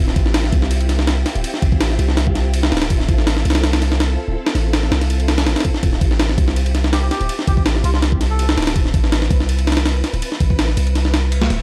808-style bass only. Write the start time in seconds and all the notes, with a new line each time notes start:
Already playing: D1
0.16 A1
0.53 C2
1.35 D1
1.62 A1
1.99 C2
2.72 D1
2.90 D1
3.09 A1
3.45 C2
4.28 D1
4.55 A1
4.92 C2
5.46 A1
5.83 D1
6.01 A1
6.38 C2
7.21 D1
7.47 A1
7.84 C2
8.57 D1
8.76 D1
8.94 A1
9.31 C2
10.13 D1
10.40 A1
10.77 C2
11.50 D1